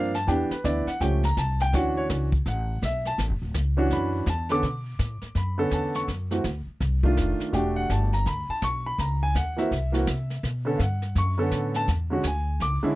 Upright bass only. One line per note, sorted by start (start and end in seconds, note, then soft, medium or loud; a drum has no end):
0.00 0.27 G2 medium
0.27 0.49 E2 medium
0.50 muted upright bass stroke soft
0.64 0.86 D2 medium
0.87 muted upright bass stroke soft
1.00 1.36 C#2 medium
1.37 1.72 C2 medium
1.73 2.08 D2 medium
2.09 2.45 C#2 medium
2.46 2.81 A1 medium
2.82 3.17 B1 medium
3.18 3.31 A1 medium
3.30 3.41 F#1 medium
3.42 3.53 D1 medium
3.54 3.90 C#2 medium
3.90 4.26 F#2 medium
4.26 4.62 E2 loud
4.63 4.98 B2 medium
4.99 5.21 A2 medium
5.22 muted upright bass stroke soft
5.35 5.71 F#2 medium
5.71 6.07 E2 medium
6.08 6.43 F#2 medium
6.44 6.66 D2 medium
6.67 muted upright bass stroke soft
6.81 7.16 C2 medium
7.17 7.38 F1 medium
7.40 muted upright bass stroke soft
7.53 7.88 E1 medium
7.90 8.25 G1 medium
8.26 8.47 D2 medium
8.49 muted upright bass stroke soft
8.62 8.97 B1 medium
8.98 9.34 C#2 medium
9.35 9.70 D#2 medium
9.71 10.06 C2 medium
10.07 10.42 C3 medium
10.43 10.78 B2 medium
10.79 11.14 G2 medium
11.15 11.51 F#2 medium
11.51 11.87 A2 medium
11.88 12.23 E2 medium
12.24 12.59 D2 medium
12.60 12.81 C#2 medium
12.84 muted upright bass stroke soft